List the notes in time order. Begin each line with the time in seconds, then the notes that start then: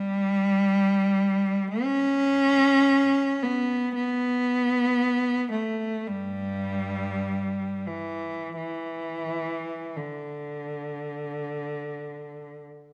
Already playing: G3
1.82 C#4
3.43 B3
3.94 B3
5.51 A3
6.07 G2 G3
7.87 E3
8.57 E3
9.96 D3